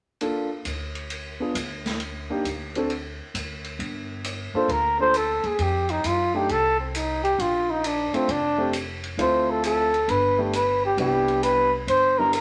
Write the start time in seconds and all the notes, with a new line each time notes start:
0.21 A#3 D4 F4 A4, ride
0.65 D2, hi-hat pedal, ride
0.95 ride
1.10 ride
1.40 B3 D4 F4 G#4
1.54 D2, hi-hat pedal, ride
1.86 snare, ride
2.00 ride
2.30 A#3 D4 D#4 G4
2.44 D2, hi-hat pedal, ride
2.75 C4 D4 F#4 A4, ride
2.90 ride
3.34 D2, hi-hat pedal, ride
3.64 ride
3.79 G1, ride
4.24 hi-hat pedal, ride
4.54 A#3 D4 F4 A4 C5, muted upright bass stroke
4.68 D2 A#4, ride
4.99 A#3 D4 F4 A4 C5
5.14 A4, hi-hat pedal, ride
5.43 D#2 G#4, ride
5.58 F2 G4, ride
5.89 D#4, ride
6.04 F#2 F4, hi-hat pedal, ride
6.34 A3 D4 D#4 G4
6.49 C2 A4, ride
6.80 C4
6.95 D#4, hi-hat pedal, ride
7.24 G4, ride
7.38 A#1 F4, ride
7.70 D#4
7.84 D4, hi-hat pedal, ride
8.13 A3 C4 D4 F4, muted upright bass stroke, ride
8.28 F1 D4, ride
8.58 A3 C4 D4 G4
8.73 hi-hat pedal, ride
9.04 ride
9.17 D2 A3 C4 E4 F4 C5, ride
9.51 A4
9.63 A4, hi-hat pedal, ride
9.94 ride
10.08 G1 B4, ride
10.38 A3 B3 D4 G4
10.53 B4, hi-hat pedal, ride
10.85 G4
10.97 C2 G3 B3 D4 E4 G4, ride
11.28 ride
11.43 B4, hi-hat pedal, ride
11.87 G1 C5, ride
12.18 G3 B3 D4 E4 A#4
12.33 A#4, hi-hat pedal, ride